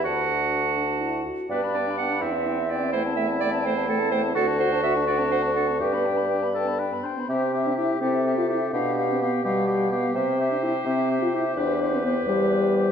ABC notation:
X:1
M:6/8
L:1/16
Q:3/8=84
K:G
V:1 name="Flute"
a8- a2 z2 | g b g b g b g e g e g e | g a g a g a g a g a g a | f a f a f a f a f a f a |
g b g b g b g b g b g b | [K:C] e2 e2 e2 e2 e2 e2 | f2 f2 f2 f2 f2 f2 | e2 e2 e2 e2 e2 e2 |
c2 c2 c2 c2 c2 c2 |]
V:2 name="Clarinet"
f8- f2 z2 | B2 d2 f2 e4 d2 | c2 e2 d2 c2 A2 c2 | A2 c2 e2 d2 c2 A2 |
B6 z6 | [K:C] G6 A6 | G12 | c12 |
B12 |]
V:3 name="Oboe"
F8- F z3 | D6 C6 | E12 | F6 F6 |
G6 A2 B2 c2 | [K:C] G2 G2 G2 G2 G2 G2 | G2 G2 G2 G2 G2 G2 | G2 G2 G2 G2 G2 G2 |
G2 G2 G2 G2 G2 G2 |]
V:4 name="French horn"
D6 D2 E2 F2 | B, D B, D B, D E C E C E C | A, C A, C A, C A, C A, C A, C | F D F D F D D C D C D C |
D B, D B, D B, D B, D B, D B, | [K:C] C3 D E2 C3 F E2 | D3 C B,2 G,4 B,2 | C3 D E2 C3 F E2 |
D3 C B,2 G,6 |]
V:5 name="Bassoon" clef=bass
D,,8- D,,2 z2 | G,,6 E,,6- | E,,12 | D,,12 |
G,,8- G,,2 z2 | [K:C] C,6 C,6 | B,,6 B,,6 | C,6 C,6 |
E,,6 E,,6 |]